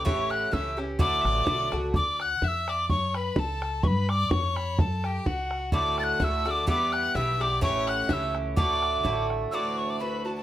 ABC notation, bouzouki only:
X:1
M:2/4
L:1/8
Q:"Swing" 1/4=127
K:D
V:1 name="Bouzouki"
[A,,E,CG]2 [A,,E,CG] [E,CG] | [A,,D,A,F]2 [A,,D,A,F] [D,A,F] | z4 | z4 |
z4 | z4 | [A,,D,A,F]2 [A,,D,A,F] [D,A,F] | [G,,E,B,G]2 [G,,E,B,G] [E,B,G] |
[A,,E,CG]2 [A,,E,CG]2 | [A,,D,A,F]2 [A,,D,A,F]2 | [A,,E,DF]2 [A,,E,DF] [E,DF] |]